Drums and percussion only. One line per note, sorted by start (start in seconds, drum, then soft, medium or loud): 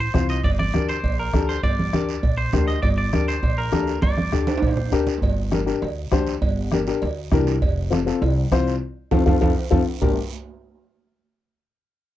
0.14 bombo low medium
0.14 bombo rim medium
0.14 high conga medium
0.14 low conga medium
0.14 short guiro medium
0.29 short guiro medium
0.44 bombo low medium
0.44 cowbell loud
0.44 long guiro medium
0.59 bombo rim medium
0.59 high conga medium
0.74 bombo rim medium
0.74 high conga medium
0.74 short guiro medium
0.89 short guiro medium
1.04 bombo low medium
1.04 cowbell medium
1.04 long guiro medium
1.34 bombo low medium
1.34 bombo rim medium
1.34 high conga medium
1.34 short guiro medium
1.49 short guiro medium
1.63 bombo low medium
1.63 cowbell loud
1.63 long guiro medium
1.79 high conga medium
1.93 bombo rim medium
1.93 high conga medium
1.93 short guiro medium
2.09 short guiro medium
2.23 bombo low medium
2.23 cowbell medium
2.23 long guiro medium
2.53 bombo rim medium
2.53 high conga medium
2.53 low conga medium
2.53 low timbale medium
2.53 short guiro medium
2.67 short guiro medium
2.83 bombo low medium
2.83 cowbell loud
2.83 long guiro medium
3.13 bombo rim medium
3.13 high conga medium
3.13 short guiro medium
3.28 short guiro medium
3.43 bombo low medium
3.43 cowbell medium
3.43 long guiro medium
3.72 bombo rim medium
3.72 high conga medium
3.72 low timbale medium
3.72 short guiro medium
3.87 short guiro medium
4.02 bombo low medium
4.02 cowbell medium
4.02 high conga medium
4.02 long guiro medium
4.18 bombo rim medium
4.18 high conga medium
4.32 bombo rim medium
4.32 low conga medium
4.32 short guiro medium
4.47 high conga medium
4.47 high timbale medium
4.47 short guiro medium
4.58 high timbale medium
4.62 bombo low medium
4.62 cowbell loud
4.62 long guiro medium
4.68 high timbale medium
4.77 low conga medium
4.92 bombo rim medium
4.92 low conga medium
4.92 short guiro medium
5.07 low conga medium
5.07 short guiro medium
5.18 low timbale medium
5.22 bombo low medium
5.22 cowbell loud
5.22 long guiro medium
5.52 bombo rim medium
5.52 high conga medium
5.52 short guiro medium
5.67 short guiro medium
5.82 cowbell medium
5.82 long guiro medium
6.12 bombo low medium
6.12 bombo rim medium
6.12 high conga medium
6.12 low timbale medium
6.12 short guiro medium
6.27 short guiro medium
6.42 bombo low medium
6.42 cowbell loud
6.42 long guiro medium
6.72 bombo rim medium
6.72 high conga medium
6.72 short guiro medium
6.87 short guiro medium
7.02 cowbell medium
7.02 long guiro medium
7.32 bombo low medium
7.32 bombo rim medium
7.32 high conga medium
7.32 low conga medium
7.32 low timbale medium
7.32 short guiro medium
7.47 short guiro medium
7.62 bombo low medium
7.62 cowbell loud
7.62 long guiro medium
7.92 bombo rim medium
7.92 high conga medium
7.92 short guiro medium
8.07 short guiro medium
8.22 cowbell loud
8.22 long guiro medium
8.52 bombo low medium
8.52 bombo rim medium
8.52 high conga medium
8.52 short guiro medium
8.67 short guiro medium
9.11 bombo low loud
9.11 high conga loud
9.11 high timbale loud
9.11 long guiro loud
9.27 bombo low loud
9.27 high conga loud
9.27 high timbale loud
9.27 long guiro loud
9.42 bombo low medium
9.42 high conga medium
9.42 high timbale loud
9.42 long guiro loud
9.71 bombo low medium
9.71 high conga loud
9.71 high timbale loud
9.71 long guiro loud
10.02 bombo low loud
10.02 low conga loud
10.02 low timbale loud
10.02 long guiro loud